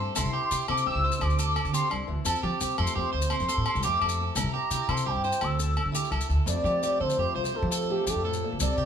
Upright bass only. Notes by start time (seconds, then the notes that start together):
0.17 C2
0.25 C3
0.51 C3
0.69 C3
0.87 C2
0.95 C#2
1.21 D2
1.65 D3
1.92 C2
2.08 D2
2.25 F2
2.43 F3
2.61 C2
2.79 F2
2.96 F2
3.14 D2
3.40 F2
3.57 A2
3.75 C2
3.85 F2
4.01 F2
4.35 C2
4.44 C3
4.71 C3
4.88 C3
5.07 C2
5.15 G2
5.42 D2
5.85 D3
6.11 C2
6.29 D2
6.46 F2
6.64 F3
7.01 D3
7.18 F2
7.35 C2
7.63 F3
8.07 F3
8.15 F2
8.52 D2
8.60 C2
8.77 C3